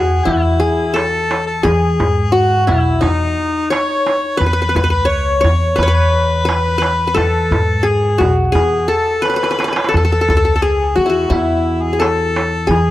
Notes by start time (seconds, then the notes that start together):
Already playing: E2 F#4 G#4
0.12 darbuka ka
0.25 E2 E4, darbuka dum
0.45 darbuka ka
0.60 G#4
0.94 A4, darbuka tek
1.14 darbuka ka
1.31 darbuka tek
1.47 A4, darbuka ka
1.63 E3 G#4, darbuka dum
2.00 G#2, darbuka dum
2.17 darbuka ka
2.32 F#4
2.66 B1 E4, darbuka dum
2.86 darbuka ka
3.01 E2 D#4, darbuka dum
3.20 darbuka ka
3.70 C#5, darbuka tek
3.89 darbuka ka
4.07 darbuka tek
4.23 darbuka ka
4.37 E2 B4, darbuka dum
4.46 B4
4.53 B4
4.62 B4
4.69 B4
4.75 C#2 B4, darbuka dum
4.84 B4
4.90 B4, darbuka ka
5.05 C#5
5.41 E2 C#5, darbuka dum
5.62 darbuka ka
5.76 E2 B4, darbuka dum
5.83 C#5
5.88 B4
5.93 B4, darbuka ka
6.45 B4, darbuka tek
6.66 darbuka ka
6.78 B4, darbuka tek
7.00 darbuka ka
7.07 B4
7.14 E3 A4, darbuka dum
7.33 darbuka ka
7.51 G#2, darbuka dum
7.83 G#4, darbuka ka
8.03 darbuka ka
8.18 B1 F#4, darbuka dum
8.52 E2 G#4, darbuka dum
8.73 darbuka ka
8.88 A4, darbuka ka
9.08 darbuka ka
9.22 B4, darbuka tek
9.29 B4
9.34 B4, darbuka ka
9.43 B4, darbuka tek
9.51 B4, darbuka ka
9.59 B4, darbuka tek
9.64 B4
9.68 darbuka ka
9.73 B4, darbuka tek
9.84 darbuka ka
9.89 A4
9.94 E2 A4, darbuka dum
10.05 A4
10.12 A4
10.21 A4
10.28 C#2 A4, darbuka dum
10.37 A4
10.45 A4, darbuka ka
10.56 A4
10.62 G#4
10.96 E2 F#4
11.06 E4 F#4
11.15 darbuka ka
11.30 E2 E4, darbuka dum
11.50 darbuka ka
11.83 G#4
11.93 G#4
12.00 A4, darbuka tek
12.19 darbuka ka
12.36 darbuka tek
12.53 darbuka ka
12.67 E3 G#4, darbuka dum